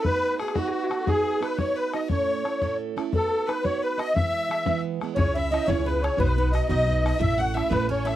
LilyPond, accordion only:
\new Staff \with { instrumentName = "Accordion" } { \time 6/8 \key b \mixolydian \tempo 4. = 117 b'4 gis'8 fis'4. | gis'4 b'8 cis''8 b'8 dis''8 | cis''2 r4 | a'4 b'8 cis''8 b'8 dis''8 |
e''2 r4 | cis''8 e''8 dis''8 cis''8 b'8 cis''8 | b'8 b'8 dis''8 dis''4. | e''8 fis''8 e''8 b'8 cis''8 e''8 | }